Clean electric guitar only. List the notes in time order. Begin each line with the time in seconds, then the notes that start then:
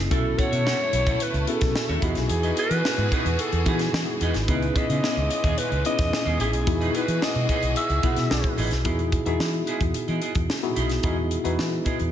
0.11 E4 A4 C#5 E5
0.38 E4 A4 C#5 F#5
0.51 E4 A4 C#5 E5
0.65 E4 A4 C#5 F#5
0.79 muted clean electric guitar stroke
0.93 muted clean electric guitar stroke
1.06 E4 A4 C#5 F#5
1.20 muted clean electric guitar stroke
1.34 muted clean electric guitar stroke
1.61 muted clean electric guitar stroke
1.75 muted clean electric guitar stroke
1.89 E4 A4 C#5 E5
2.02 D#4 G#4 B4 D#5
2.16 muted clean electric guitar stroke
2.30 muted clean electric guitar stroke
2.43 D#4 G#4 B4 D#5
2.57 D#4 G#4 B4 D#5
2.71 muted clean electric guitar stroke
2.85 muted clean electric guitar stroke
2.99 muted clean electric guitar stroke
3.12 D#4 G#4 B4 D#5
3.26 muted clean electric guitar stroke
3.53 muted clean electric guitar stroke
3.67 D#4 G#4 B4 F#5
3.81 muted clean electric guitar stroke
3.94 muted clean electric guitar stroke
4.08 muted clean electric guitar stroke
4.21 D#4 G#4 B4 D#5
4.35 muted clean electric guitar stroke
4.48 B3 E4 G#4 D#5
4.76 B3 E4 G#4 E5
4.89 B3 E4 G#4 D#5
5.03 B3 E4 G#4 E5
5.17 muted clean electric guitar stroke
5.31 muted clean electric guitar stroke
5.44 B3 E4 G#4 E5
5.57 muted clean electric guitar stroke
5.71 muted clean electric guitar stroke
5.98 muted clean electric guitar stroke
6.12 muted clean electric guitar stroke
6.25 B3 E4 G#4 D#5
6.39 B3 E4 G#4 D#5
6.53 muted clean electric guitar stroke
6.67 muted clean electric guitar stroke
6.81 D#4 G#4 B4 D#5
6.94 D#4 G#4 B4 D#5
7.08 muted clean electric guitar stroke
7.22 muted clean electric guitar stroke
7.36 muted clean electric guitar stroke
7.49 D#4 G#4 B4 D#5
7.63 muted clean electric guitar stroke
7.90 muted clean electric guitar stroke
8.03 D#4 G#4 B4 F#5
8.16 muted clean electric guitar stroke
8.30 muted clean electric guitar stroke
8.43 muted clean electric guitar stroke
8.57 D#4 G#4 B4 D#5
8.71 muted clean electric guitar stroke
8.84 B3 E4 G#4 D#5
8.98 muted clean electric guitar stroke
9.12 muted clean electric guitar stroke
9.26 B3 E4 G#4 E5
9.53 muted clean electric guitar stroke
9.67 B3 E4 G#4 D#5
9.81 muted clean electric guitar stroke
9.95 muted clean electric guitar stroke
10.08 B3 E4 G#4 D#5
10.22 B3 E4 G#4 D#5
10.35 muted clean electric guitar stroke
10.62 muted clean electric guitar stroke
10.75 B3 E4 G#4 D#5
10.90 muted clean electric guitar stroke
11.04 B3 E4 G#4 D#5
11.18 muted clean electric guitar stroke
11.31 muted clean electric guitar stroke
11.44 B3 E4 G#4 D#5
11.72 muted clean electric guitar stroke
11.85 B3 E4 G#4 D#5
11.99 muted clean electric guitar stroke